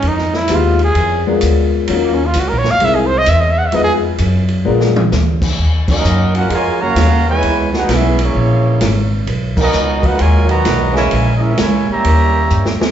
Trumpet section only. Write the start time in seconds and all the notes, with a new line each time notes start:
5.90 C#4 F#4 A#4 D#5
6.36 C#4 F4 A#4 F#5
6.52 F4 A#4 C#5 G#5
6.80 F#4 C#5 F5 A#5
7.28 E4 B4 C#5 G#5
7.76 D#4 G#4 B4 F#5
7.93 C#4 G#4 B4 E5
8.23 A#3 E4 G#4 C#5
9.60 B3 F#4 A#4 D#5
10.04 D#4 A#4 B4 F#5
10.19 F4 A#4 C#5 G#5
10.49 F#4 B4 D#5 A#5
10.95 E4 A#4 C#5 G#5
11.37 A#4 D#5
11.41 C#4 G#4 E5
11.57 E4 A#4 C#5 G#5
11.90 G4 C#5 E5 A#5